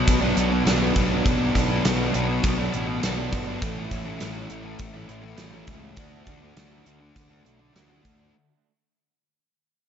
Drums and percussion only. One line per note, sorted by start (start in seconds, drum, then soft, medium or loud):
0.08 kick loud
0.08 closed hi-hat medium
0.37 closed hi-hat medium
0.67 snare medium
0.67 closed hi-hat medium
0.96 kick medium
0.96 closed hi-hat medium
1.26 kick loud
1.26 closed hi-hat medium
1.55 kick medium
1.55 closed hi-hat medium
1.85 snare loud
1.85 closed hi-hat medium
2.14 closed hi-hat medium
2.44 kick loud
2.44 closed hi-hat medium
2.74 closed hi-hat medium
3.03 snare medium
3.03 closed hi-hat medium
3.33 kick medium
3.33 closed hi-hat medium
3.62 kick loud
3.62 closed hi-hat medium
3.91 kick medium
3.91 closed hi-hat medium
4.20 snare loud
4.20 closed hi-hat medium
4.50 closed hi-hat medium
4.79 kick loud
4.79 closed hi-hat medium
5.09 closed hi-hat soft
5.38 snare medium
5.38 closed hi-hat medium
5.67 kick medium
5.67 closed hi-hat medium
5.97 kick medium
5.97 closed hi-hat medium
6.26 kick medium
6.26 closed hi-hat soft
6.57 snare loud
6.57 closed hi-hat medium
6.86 closed hi-hat medium
7.16 kick loud
7.16 closed hi-hat medium
7.46 closed hi-hat medium
7.76 snare medium
7.76 closed hi-hat medium
8.05 kick medium
8.05 closed hi-hat medium